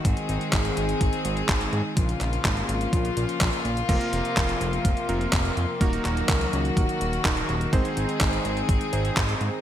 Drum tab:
CC |----------------|----------------|x---------------|----------------|
HH |xxxxxxxxxxxxxxx-|xxxxxxxxxxxxxxxx|xxxxxxxxxxxxxxx-|xxxxxxxxxxxxxxxx|
CP |----x-------x---|--x-x-------x---|----x-------x---|--x-x-------x---|
BD |o---o---o---o---|o---o---o---o---|o---o---o---o---|o---o---o---o---|

CC |----------------|
HH |xxxxxxxxxxxxxxx-|
CP |----x-------x---|
BD |o---o---o---o---|